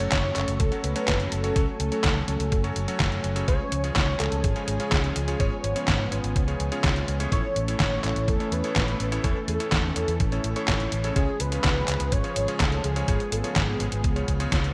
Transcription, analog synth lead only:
0.12 0.61 C#5 loud
0.59 0.85 A4 loud
0.84 1.33 B4 loud
1.32 1.79 A4 loud
1.80 3.20 A4 medium
3.48 3.93 C#5 loud
3.96 4.18 C#5 loud
4.20 4.45 A4 loud
4.44 5.41 G#4 loud
5.40 6.36 C#5 loud
7.32 7.77 C#5 loud
7.80 8.30 C#5 loud
8.29 8.54 A4 loud
8.52 9.26 B4 loud
9.24 9.48 A4 loud
9.48 10.88 A4 loud
11.16 11.42 G#4 loud
11.40 12.14 B4 loud
12.12 12.62 C#5 loud
12.60 12.86 A4 loud
12.84 13.34 G#4 loud
13.32 13.56 A4 medium
13.56 14.24 G#4 medium

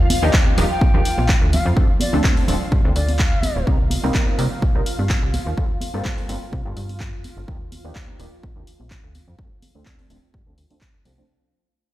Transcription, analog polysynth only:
0.22 0.31 F3 medium
0.22 0.31 A#3 medium
0.22 0.32 D4 medium
0.22 0.32 D#4 medium
0.22 0.32 G4 loud
0.33 0.55 F3 medium
0.33 0.55 A#3 medium
0.33 0.55 D4 medium
0.33 0.55 D#4 medium
0.33 0.55 G4 loud
0.57 0.64 F3 medium
0.57 0.64 A#3 medium
0.57 0.64 D4 medium
0.57 0.64 D#4 medium
0.57 0.64 G4 loud
0.94 0.99 F3 medium
0.94 1.00 A#3 medium
0.94 1.00 D4 medium
0.94 1.00 D#4 medium
0.94 1.00 G4 medium
1.76 1.86 F3 medium
1.76 1.87 A3 medium
1.76 1.87 C4 medium
1.76 1.87 D4 medium
1.76 1.87 A4 medium
2.13 2.22 F3 medium
2.13 2.22 A3 medium
2.13 2.22 C4 medium
2.13 2.22 D4 medium
2.13 2.22 A4 medium
2.24 2.45 F3 medium
2.24 2.45 A3 medium
2.24 2.45 C4 medium
2.24 2.45 D4 medium
2.48 2.54 F3 medium
2.48 2.54 A3 medium
2.48 2.54 C4 medium
2.48 2.54 D4 medium
2.48 2.55 A4 medium
2.84 2.90 F3 medium
2.84 2.90 A3 medium
2.84 2.90 C4 medium
2.84 2.90 D4 medium
2.84 2.90 A4 medium
3.67 3.77 G3 medium
3.67 3.77 A#3 medium
3.67 3.77 C4 medium
3.67 3.77 D#4 medium
3.67 3.77 A#4 medium
4.03 4.12 G3 medium
4.03 4.12 A#3 medium
4.03 4.12 C4 medium
4.03 4.13 D#4 medium
4.03 4.13 A#4 medium
4.38 4.45 G3 medium
4.38 4.45 A#3 medium
4.38 4.45 C4 medium
4.38 4.45 D#4 medium
4.38 4.45 A#4 loud
4.75 4.80 G3 medium
4.75 4.80 A#3 medium
4.75 4.81 C4 medium
4.75 4.81 D#4 medium
4.75 4.81 A#4 medium
5.57 5.67 G3 medium
5.57 5.67 A#3 medium
5.57 5.68 C4 medium
5.57 5.68 F4 medium
5.57 5.68 A4 medium
5.94 6.03 G3 medium
5.94 6.03 A#3 medium
5.94 6.03 C4 medium
5.94 6.03 F4 medium
5.94 6.03 A4 medium
6.05 6.26 G3 medium
6.05 6.26 A#3 medium
6.05 6.27 A4 medium
6.29 6.35 G3 medium
6.29 6.35 A#3 medium
6.29 6.35 C4 medium
6.29 6.35 F4 medium
6.29 6.36 A4 medium
6.65 6.71 G3 medium
6.65 6.71 A#3 medium
6.65 6.71 C4 medium
6.65 6.71 F4 medium
6.65 6.71 A4 medium
7.48 7.58 F3 medium
7.48 7.58 A#3 medium
7.48 7.58 D4 medium
7.48 7.58 D#4 medium
7.48 7.58 G4 medium
7.84 7.93 F3 medium
7.84 7.93 A#3 medium
7.84 7.93 D4 medium
7.84 7.93 D#4 medium
7.84 7.94 G4 loud
7.95 8.17 F3 medium
7.95 8.17 A#3 medium
7.95 8.17 D4 medium
7.95 8.17 D#4 medium
7.95 8.17 G4 medium
8.19 8.26 F3 medium
8.19 8.26 A#3 medium
8.19 8.26 D4 medium
8.19 8.26 D#4 medium
8.19 8.26 G4 loud
8.55 8.61 F3 medium
8.55 8.61 A#3 medium
8.55 8.61 D4 medium
8.55 8.62 D#4 medium
8.55 8.62 G4 medium
9.38 9.48 F3 medium
9.38 9.49 A3 medium
9.38 9.49 C4 medium
9.38 9.49 D4 medium
9.38 9.49 A4 medium
9.75 9.84 F3 medium
9.75 9.84 A3 medium
9.75 9.84 C4 medium
9.75 9.84 D4 medium
9.75 9.84 A4 medium
10.10 10.16 F3 medium
10.10 10.16 A3 medium
10.10 10.16 C4 medium
10.10 10.16 D4 medium
10.10 10.17 A4 medium
10.46 10.52 F3 medium
10.46 10.52 A3 medium
10.46 10.52 C4 medium
10.46 10.52 D4 medium
10.46 10.52 A4 medium
10.70 10.76 F3 medium
10.70 10.76 A3 medium
10.70 10.76 C4 medium
10.70 10.76 D4 medium
10.70 10.76 A4 medium
11.05 11.11 F3 medium
11.05 11.12 A3 medium
11.05 11.12 C4 medium
11.05 11.12 D4 medium
11.05 11.12 A4 medium
11.18 11.23 F3 medium
11.18 11.23 A3 medium
11.18 11.23 C4 medium
11.18 11.24 D4 medium
11.18 11.24 A4 medium

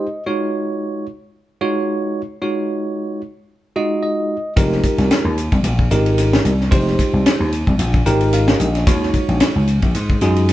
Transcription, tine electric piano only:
0.00 0.23 D#5 medium
0.26 1.06 G#3 medium
0.26 1.06 D#4 medium
0.26 1.06 F4 medium
0.26 1.06 F#4 medium
0.26 1.06 C#5 medium
1.61 2.21 G#3 medium
1.61 2.21 D#4 medium
1.61 2.21 F4 medium
1.61 2.21 F#4 medium
1.61 2.21 C#5 medium
2.42 3.21 G#3 medium
2.42 3.21 D#4 medium
2.42 3.21 F4 medium
2.42 3.21 F#4 medium
2.42 3.21 C#5 medium
3.76 4.36 G#3 medium
3.76 4.36 D#4 medium
3.76 4.36 F4 medium
3.76 4.36 F#4 medium
3.76 4.01 D#5 medium
4.03 4.53 D#5 medium
4.56 5.36 G#3 medium
4.56 5.36 D#4 medium
4.56 5.36 F4 medium
4.56 5.36 G4 medium
4.56 5.36 A#4 medium
5.91 6.51 G#3 medium
5.91 6.51 D#4 medium
5.91 6.51 F4 medium
5.91 6.51 G4 medium
5.91 6.51 A#4 medium
6.71 7.50 G#3 medium
6.71 7.51 D#4 medium
6.71 7.51 F4 medium
6.71 7.51 G4 medium
6.71 7.51 C5 medium
8.06 8.66 G#3 medium
8.06 8.66 D#4 medium
8.06 8.66 F4 medium
8.06 8.66 G4 medium
8.06 8.66 A#4 medium
8.06 8.31 G5 medium
8.34 8.58 F5 medium
8.60 8.85 D#5 medium
8.87 9.66 G#3 medium
8.87 9.66 D#4 medium
8.87 9.66 F4 medium
8.87 9.66 F#4 medium
8.87 9.66 C#5 medium
10.22 10.53 G#3 medium
10.22 10.53 D#4 medium
10.22 10.53 F4 medium
10.22 10.53 F#4 medium
10.22 10.53 G#4 medium

